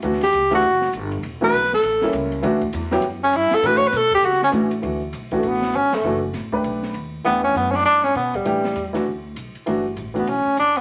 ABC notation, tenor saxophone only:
X:1
M:4/4
L:1/16
Q:"Swing" 1/4=199
K:D
V:1 name="Tenor saxophone"
z2 G4 F6 z4 | z2 B4 A6 z4 | z8 z2 C2 E2 A2 | (3B2 c2 B2 A2 G2 F2 C2 z4 |
z6 A,2 B,4 C2 A,2- | A,2 z12 z2 | B,2 C2 B,3/2 C/2 D2 D2 C2 B,2 G,2- | G,6 z8 z2 |
z6 B,2 C4 D2 B,2 |]